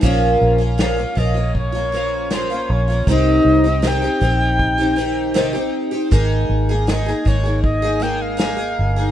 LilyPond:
<<
  \new Staff \with { instrumentName = "Flute" } { \time 4/4 \key aes \major \tempo 4 = 79 r4 f''8 ees''8 des''4 c''8 des''8 | ees''4 g''2~ g''8 r8 | r4 ees''8 des''8 ees''8 g''16 f''4~ f''16 | }
  \new Staff \with { instrumentName = "Twelve-string acoustic guitar" } { \time 4/4 \key aes \major <bes, f bes des' f'>8. <bes des' f'>16 <bes, f bes des' f'>16 <bes des' f'>16 <f bes des' f'>16 <bes des' f'>8 <bes des' f'>16 <f bes des' f'>8 <bes, f bes des' f'>16 <bes des' f'>8 <bes des' f'>16 | <c ees c' ees' g'>8. <c' ees' g'>16 <c ees c' ees' g'>16 <c' ees' g'>16 <ees c' ees' g'>8. <c' ees' g'>16 <ees c' ees' g'>8 <c ees c' ees' g'>16 <c' ees' g'>8 <c' ees' g'>16 | <aes bes ees' aes'>8. <bes ees' aes'>16 <aes bes ees' aes'>16 <bes ees' aes'>16 <aes bes ees' aes'>16 <bes ees' aes'>8 <bes ees' aes'>16 <aes bes ees' aes'>8 <aes bes ees' aes'>16 <bes ees' aes'>8 <bes ees' aes'>16 | }
  \new Staff \with { instrumentName = "Fingered electric bass" } { \clef bass \time 4/4 \key aes \major bes,,8 bes,,4 bes,,2 bes,,8 | c,8 c,4 bes,,2 r8 | aes,,8 aes,,4 aes,,2 g,,8 | }
  \new DrumStaff \with { instrumentName = "Drums" } \drummode { \time 4/4 bd4 sn8 bd8 bd4 sn4 | bd4 sn16 sn16 bd8 bd4 sn4 | bd4 sn16 sn16 bd8 bd4 sn4 | }
>>